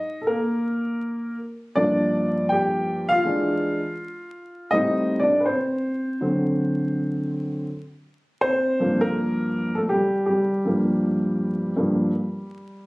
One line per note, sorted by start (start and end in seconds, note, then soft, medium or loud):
0.00 0.19 D#4 medium
0.00 0.24 D#5 loud
0.21 0.28 A4 medium
0.27 1.36 A#3 medium
0.27 1.35 A#4 medium
1.75 3.21 G2 medium
1.75 3.21 F3 medium
1.75 3.21 A#3 medium
1.75 2.47 D4 medium
1.75 2.52 D5 loud
2.49 3.08 G4 medium
2.49 3.12 G5 medium
3.09 4.70 F4 medium
3.09 4.77 F5 loud
3.24 3.77 E3 medium
3.24 3.78 G#3 soft
3.24 3.78 D4 medium
4.71 5.25 A2 soft
4.71 5.26 G3 soft
4.71 5.26 C4 medium
4.71 5.20 D#4 medium
4.71 5.23 D#5 loud
5.19 5.41 D4 medium
5.19 5.39 D5 medium
5.40 5.46 B4 medium
5.45 6.21 C4 medium
5.45 7.27 C5 medium
6.21 7.65 D3 medium
6.21 7.65 F#3 soft
6.21 7.66 C4 medium
8.41 9.00 C4 medium
8.41 9.04 C5 loud
8.80 9.87 G2 medium
8.80 9.87 F3 medium
8.80 9.02 A#3 medium
9.01 9.74 A#3 medium
9.01 9.78 A#4 loud
9.75 9.83 A3 medium
9.75 9.80 A4 medium
9.89 10.26 G3 medium
9.89 10.25 G4 medium
10.26 12.84 G3 medium
10.26 12.83 G4 medium
10.65 11.72 G2 soft
10.65 11.73 F3 soft
10.65 11.73 A#3 medium
11.77 12.10 G2 medium
11.77 12.10 F3 soft
11.77 12.10 A#3 medium